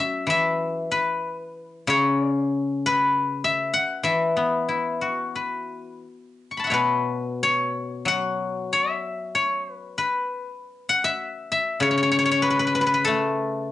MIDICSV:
0, 0, Header, 1, 2, 480
1, 0, Start_track
1, 0, Tempo, 639659
1, 1168, Time_signature, 4, 2, 24, 8
1, 1652, Tempo, 620476
1, 3572, Tempo, 674916
1, 5972, Tempo, 626305
1, 9332, Tempo, 644468
1, 10282, End_track
2, 0, Start_track
2, 0, Title_t, "Guzheng"
2, 0, Program_c, 0, 107
2, 0, Note_on_c, 0, 54, 56
2, 0, Note_on_c, 0, 61, 46
2, 0, Note_on_c, 0, 66, 39
2, 0, Note_on_c, 0, 76, 70
2, 200, Note_on_c, 0, 52, 55
2, 222, Note_off_c, 0, 76, 0
2, 225, Note_on_c, 0, 76, 88
2, 452, Note_off_c, 0, 61, 0
2, 681, Note_off_c, 0, 54, 0
2, 686, Note_on_c, 0, 71, 68
2, 689, Note_off_c, 0, 66, 0
2, 1405, Note_on_c, 0, 49, 67
2, 1424, Note_on_c, 0, 73, 86
2, 1517, Note_off_c, 0, 76, 0
2, 1645, Note_off_c, 0, 52, 0
2, 2159, Note_off_c, 0, 71, 0
2, 2162, Note_on_c, 0, 71, 87
2, 2611, Note_on_c, 0, 76, 82
2, 2836, Note_off_c, 0, 49, 0
2, 2838, Note_on_c, 0, 78, 82
2, 2893, Note_off_c, 0, 73, 0
2, 3069, Note_on_c, 0, 52, 53
2, 3074, Note_off_c, 0, 76, 0
2, 3077, Note_on_c, 0, 76, 63
2, 3327, Note_on_c, 0, 59, 44
2, 3573, Note_on_c, 0, 64, 35
2, 3732, Note_off_c, 0, 71, 0
2, 3807, Note_on_c, 0, 66, 37
2, 4039, Note_off_c, 0, 78, 0
2, 4050, Note_on_c, 0, 71, 36
2, 4290, Note_off_c, 0, 59, 0
2, 4506, Note_off_c, 0, 76, 0
2, 4531, Note_off_c, 0, 52, 0
2, 4536, Note_off_c, 0, 64, 0
2, 4782, Note_off_c, 0, 66, 0
2, 4872, Note_on_c, 0, 85, 26
2, 4915, Note_on_c, 0, 83, 29
2, 4932, Note_on_c, 0, 81, 36
2, 4964, Note_on_c, 0, 78, 39
2, 4984, Note_on_c, 0, 76, 37
2, 5007, Note_on_c, 0, 73, 42
2, 5016, Note_on_c, 0, 47, 52
2, 5024, Note_off_c, 0, 71, 0
2, 5032, Note_on_c, 0, 71, 65
2, 5522, Note_off_c, 0, 73, 0
2, 5525, Note_on_c, 0, 73, 81
2, 5767, Note_off_c, 0, 85, 0
2, 5876, Note_off_c, 0, 83, 0
2, 5963, Note_off_c, 0, 81, 0
2, 5969, Note_on_c, 0, 54, 56
2, 5985, Note_off_c, 0, 78, 0
2, 5988, Note_on_c, 0, 78, 89
2, 6227, Note_off_c, 0, 76, 0
2, 6457, Note_off_c, 0, 47, 0
2, 6485, Note_on_c, 0, 76, 78
2, 6529, Note_off_c, 0, 71, 0
2, 6952, Note_off_c, 0, 73, 0
2, 6962, Note_on_c, 0, 73, 67
2, 7218, Note_off_c, 0, 78, 0
2, 7246, Note_off_c, 0, 73, 0
2, 7246, Note_on_c, 0, 71, 67
2, 7421, Note_off_c, 0, 54, 0
2, 7444, Note_off_c, 0, 71, 0
2, 7444, Note_on_c, 0, 71, 64
2, 7806, Note_off_c, 0, 76, 0
2, 8144, Note_on_c, 0, 78, 94
2, 8260, Note_on_c, 0, 76, 89
2, 8620, Note_off_c, 0, 76, 0
2, 8623, Note_on_c, 0, 76, 74
2, 8840, Note_on_c, 0, 49, 66
2, 8858, Note_on_c, 0, 73, 78
2, 8919, Note_off_c, 0, 73, 0
2, 8922, Note_on_c, 0, 73, 57
2, 8971, Note_off_c, 0, 73, 0
2, 8974, Note_on_c, 0, 73, 63
2, 9011, Note_off_c, 0, 73, 0
2, 9013, Note_off_c, 0, 71, 0
2, 9014, Note_on_c, 0, 73, 63
2, 9079, Note_off_c, 0, 73, 0
2, 9082, Note_on_c, 0, 73, 75
2, 9133, Note_off_c, 0, 73, 0
2, 9136, Note_on_c, 0, 73, 66
2, 9185, Note_off_c, 0, 73, 0
2, 9189, Note_on_c, 0, 73, 76
2, 9231, Note_off_c, 0, 73, 0
2, 9234, Note_on_c, 0, 73, 73
2, 9316, Note_on_c, 0, 71, 84
2, 9373, Note_off_c, 0, 78, 0
2, 9375, Note_off_c, 0, 71, 0
2, 9378, Note_on_c, 0, 71, 60
2, 9441, Note_off_c, 0, 71, 0
2, 9444, Note_on_c, 0, 71, 68
2, 9497, Note_off_c, 0, 71, 0
2, 9500, Note_on_c, 0, 71, 55
2, 9558, Note_off_c, 0, 71, 0
2, 9561, Note_on_c, 0, 71, 65
2, 9603, Note_off_c, 0, 71, 0
2, 9606, Note_on_c, 0, 71, 58
2, 9644, Note_off_c, 0, 71, 0
2, 9647, Note_on_c, 0, 71, 55
2, 9699, Note_off_c, 0, 71, 0
2, 9702, Note_on_c, 0, 71, 58
2, 9782, Note_on_c, 0, 69, 88
2, 9802, Note_on_c, 0, 57, 56
2, 9926, Note_off_c, 0, 76, 0
2, 10277, Note_off_c, 0, 73, 0
2, 10282, Note_off_c, 0, 49, 0
2, 10282, Note_off_c, 0, 57, 0
2, 10282, Note_off_c, 0, 69, 0
2, 10282, Note_off_c, 0, 71, 0
2, 10282, End_track
0, 0, End_of_file